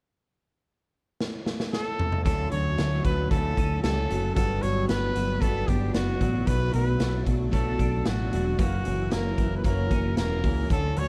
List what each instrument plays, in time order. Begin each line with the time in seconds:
1.21 snare
1.46 snare
1.60 snare
1.73 trumpet A4, snare
1.99 mid tom
2.12 mid tom
2.25 picked electric bass D2, steel-string acoustic guitar D3 F#3 A3 C#4 F#4, trumpet A4, kick, closed hi-hat
2.51 picked electric bass D2, clean electric guitar F#3, steel-string acoustic guitar A3 C#4 F#4, trumpet C#5, closed hi-hat
2.78 picked electric bass D2, steel-string acoustic guitar F#3 A3 C#4 F#4, snare, closed hi-hat
3.04 picked electric bass D2, clean electric guitar F#3, steel-string acoustic guitar A3 C#4 F#4, trumpet B4, kick, closed hi-hat
3.31 picked electric bass D2, steel-string acoustic guitar D3 F#3 A3 C#4 F#4, trumpet A4, kick, closed hi-hat
3.57 picked electric bass D2, steel-string acoustic guitar A3 F#4, clean electric guitar C#4, kick, closed hi-hat
3.83 picked electric bass C#2, steel-string acoustic guitar F#3 A3 C#4 F#4, clean electric guitar G3, trumpet A4, snare, closed hi-hat
3.97 clean electric guitar A3
4.10 picked electric bass F#1, clean electric guitar F#3, steel-string acoustic guitar A3 C#4 F#4, closed hi-hat
4.35 picked electric bass G1, clean electric guitar G2, steel-string acoustic guitar G3 B3 D4 F#4, trumpet A4, kick, closed hi-hat
4.62 picked electric bass G1, clean electric guitar F#3, steel-string acoustic guitar B3 D4 F#4, trumpet C#5, closed hi-hat
4.88 picked electric bass G1, steel-string acoustic guitar G3 B3 D4 F#4, trumpet B4, snare, closed hi-hat
5.15 picked electric bass G1, clean electric guitar F#3, steel-string acoustic guitar B3 D4 F#4, closed hi-hat
5.41 picked electric bass G1, steel-string acoustic guitar G3 B3 D4 F#4, trumpet A4, kick, closed hi-hat
5.67 picked electric bass G1, steel-string acoustic guitar B3 D4 F#4, trumpet G4, kick, closed hi-hat
5.94 picked electric bass F#1, steel-string acoustic guitar G3 B3 D4 F#4, trumpet F#4, snare, closed hi-hat
6.21 picked electric bass A1, clean electric guitar F#3, steel-string acoustic guitar B3 D4 F#4, kick, closed hi-hat
6.46 picked electric bass B1, steel-string acoustic guitar B2 F#3 A3 D4 F#4, trumpet B4, kick, closed hi-hat
6.72 picked electric bass B1, clean electric guitar F#3, steel-string acoustic guitar A3 D4 F#4, trumpet B4, closed hi-hat
6.99 picked electric bass B1, steel-string acoustic guitar F#3 A3 D4 F#4, snare, closed hi-hat
7.25 picked electric bass B1, clean electric guitar F#3, steel-string acoustic guitar A3 D4 F#4, kick, closed hi-hat
7.51 picked electric bass B1, steel-string acoustic guitar B2 F#3 A3 D4 F#4, trumpet A4, kick, closed hi-hat
7.78 picked electric bass B1, steel-string acoustic guitar A3 D4 F#4, kick, closed hi-hat
8.04 picked electric bass A1, steel-string acoustic guitar F#3 A3 D4 F#4, trumpet F#4, snare, closed hi-hat
8.31 picked electric bass E1, clean electric guitar F#3, steel-string acoustic guitar A3 D4 F#4, closed hi-hat
8.58 picked electric bass F#1, steel-string acoustic guitar F#2 C#3 E3 A#3 C#4 F#4, trumpet F#4, kick, closed hi-hat
8.84 picked electric bass F#1, steel-string acoustic guitar E3 A#3 C#4 F#4, closed hi-hat
9.11 picked electric bass F#1, steel-string acoustic guitar E3 A#3 C#4 F#4, trumpet A#4, snare, closed hi-hat
9.37 picked electric bass F#1, steel-string acoustic guitar E3 A#3 C#4 F#4, kick, closed hi-hat
9.57 trumpet B4
9.64 picked electric bass F#1, steel-string acoustic guitar F#2 C#3 E3 A#3 C#4 F#4, trumpet A#4, kick, closed hi-hat
9.90 picked electric bass F#1, steel-string acoustic guitar E3 A#3 C#4 F#4, kick, closed hi-hat
10.16 picked electric bass E1, steel-string acoustic guitar E3 A#3 C#4 F#4, trumpet A#4, snare, closed hi-hat
10.43 picked electric bass C#2, steel-string acoustic guitar E3 A#3 C#4 F#4, kick, open hi-hat
10.70 picked electric bass D2, steel-string acoustic guitar D3 F#3 A3 C#4 F#4, trumpet A4, kick, closed hi-hat
10.96 picked electric bass D2, clean electric guitar F#3, steel-string acoustic guitar A3 C#4 F#4, trumpet C#5, closed hi-hat